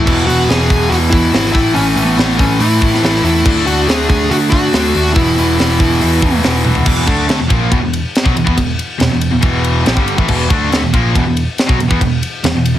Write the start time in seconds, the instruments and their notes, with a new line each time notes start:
Already playing: lead electric guitar E4
0.05 picked electric bass E1, overdriven electric guitar E2 B2 E3, kick, crash
0.27 picked electric bass E1, overdriven electric guitar E2 B2 E3, lead electric guitar F#4, open hi-hat
0.48 picked electric bass E1, overdriven electric guitar E2 B2 E3, lead electric guitar G#4, snare, open hi-hat
0.69 picked electric bass E1, overdriven electric guitar E2 B2 E3, kick, open hi-hat
0.90 overdriven electric guitar E2 B2 E3, picked electric bass E2, lead electric guitar F#4, open hi-hat
1.10 overdriven electric guitar E2 B2 E3, lead electric guitar E4, kick, open hi-hat
1.32 picked electric bass G#1, overdriven electric guitar E2 B2 E3, snare, open hi-hat
1.46 snare
1.53 picked electric bass A1, overdriven electric guitar A2 E3 A3, lead electric guitar E4, kick, open hi-hat
1.74 picked electric bass A1, overdriven electric guitar A2 E3 A3, lead electric guitar C#4, open hi-hat
1.96 picked electric bass A1, overdriven electric guitar A2 E3 A3, open hi-hat
2.05 lead electric guitar B3
2.18 picked electric bass A1, overdriven electric guitar A2 E3 A3, snare, open hi-hat
2.38 picked electric bass A1, overdriven electric guitar A2 E3 A3, lead electric guitar C#4, kick, open hi-hat
2.59 overdriven electric guitar A2 E3 A3, picked electric bass A2, lead electric guitar E4, open hi-hat
2.80 overdriven electric guitar A2 E3 A3, kick, open hi-hat
2.94 snare
3.01 picked electric bass A1, overdriven electric guitar A2 E3 A3, snare, open hi-hat
3.16 snare
3.23 picked electric bass E2, overdriven electric guitar A2 E3 A3, lead electric guitar E4, open hi-hat
3.45 picked electric bass D2, overdriven electric guitar D3 A3 D4, kick, crash
3.65 picked electric bass D2, overdriven electric guitar D3 A3 D4, lead electric guitar F#4, open hi-hat
3.88 picked electric bass D2, overdriven electric guitar D3 A3 D4, lead electric guitar G#4, snare, open hi-hat
4.09 picked electric bass D2, overdriven electric guitar D3 A3 D4, lead electric guitar G#4, kick, open hi-hat
4.29 overdriven electric guitar D3 A3 D4, picked electric bass D3, lead electric guitar F#4, open hi-hat
4.50 overdriven electric guitar D3 A3 D4, lead electric guitar F#4, kick, open hi-hat
4.73 picked electric bass D2, overdriven electric guitar D3 A3 D4, snare, open hi-hat
4.94 picked electric bass D#2, overdriven electric guitar D3 A3 D4, open hi-hat
5.14 picked electric bass E1, overdriven electric guitar E2 B2 E3, lead electric guitar E4, kick, open hi-hat
5.38 picked electric bass E1, overdriven electric guitar E2 B2 E3, open hi-hat
5.58 picked electric bass E1, overdriven electric guitar E2 B2 E3, snare, open hi-hat
5.80 picked electric bass E1, overdriven electric guitar E2 B2 E3, kick, open hi-hat
6.01 overdriven electric guitar E2 B2 E3, picked electric bass E2, open hi-hat
6.22 overdriven electric guitar E2 B2 E3, kick, open hi-hat
6.43 picked electric bass E1, overdriven electric guitar E2 B2 E3, snare, open hi-hat
6.65 picked electric bass E1, overdriven electric guitar E2 B2 E3, high tom
6.75 floor tom
6.86 picked electric bass E1, overdriven electric guitar E2 B2 E3, kick, crash
7.07 picked electric bass D2, overdriven electric guitar D3 A3 D4, kick, ride
7.28 picked electric bass D2, overdriven electric guitar D3 A3, snare, ride
7.39 picked electric bass E1, overdriven electric guitar E2 B2
7.49 picked electric bass A#1, overdriven electric guitar A#2 F3 A#3, kick, ride
7.71 picked electric bass E1, overdriven electric guitar E2 B2, kick, ride
7.82 picked electric bass E1, overdriven electric guitar E2 B2
7.93 ride
8.15 snare, ride
8.25 picked electric bass B1, overdriven electric guitar B2 F#3, kick
8.37 picked electric bass E1, overdriven electric guitar E2 B2, ride
8.46 picked electric bass E2, overdriven electric guitar E3 B3, kick
8.57 picked electric bass E1, overdriven electric guitar E2 B2, kick, ride
8.79 ride
9.00 picked electric bass E1, overdriven electric guitar E2 B2, snare, ride
9.11 picked electric bass E1, overdriven electric guitar E2 B2
9.21 ride
9.32 picked electric bass E1, overdriven electric guitar E2 B2
9.42 picked electric bass E1, overdriven electric guitar E2 B2 E3, kick, ride
9.64 ride
9.86 picked electric bass A#1, overdriven electric guitar A#2 F3, snare, ride
9.97 picked electric bass G1, overdriven electric guitar G2 D3 G3, kick
10.08 ride
10.18 picked electric bass A1, overdriven electric guitar A2 E3, kick
10.28 picked electric bass E1, overdriven electric guitar E2 B2 E3, kick, crash
10.50 picked electric bass D2, overdriven electric guitar D3 A3 D4, kick, ride
10.72 picked electric bass D2, overdriven electric guitar D3 A3, snare, ride
10.81 picked electric bass E1, distorted electric guitar E2, overdriven electric guitar B2
10.85 overdriven electric guitar E2
10.94 picked electric bass A#1, overdriven electric guitar A#2 F3 A#3, kick, ride
11.15 picked electric bass E1, overdriven electric guitar E2 B2, kick, ride
11.26 picked electric bass E1, overdriven electric guitar E2 B2
11.37 ride
11.58 snare, ride
11.69 picked electric bass B1, overdriven electric guitar B2 F#3, kick
11.80 picked electric bass E1, overdriven electric guitar E2 B2, ride
11.90 picked electric bass E2, overdriven electric guitar E3 B3, kick
12.01 picked electric bass E1, overdriven electric guitar E2 B2, kick, ride
12.23 ride
12.44 picked electric bass E1, overdriven electric guitar E2 B2, snare, ride
12.55 picked electric bass E1, overdriven electric guitar E2 B2
12.66 ride
12.74 distorted electric guitar E2 B2